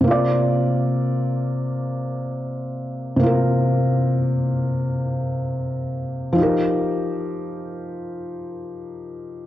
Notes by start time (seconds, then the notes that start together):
0.01 C3 A#3
0.07 F4 D5
3.17 C3 A#3
3.23 F4 A#4
6.33 F3 D#4
6.39 G4 A#4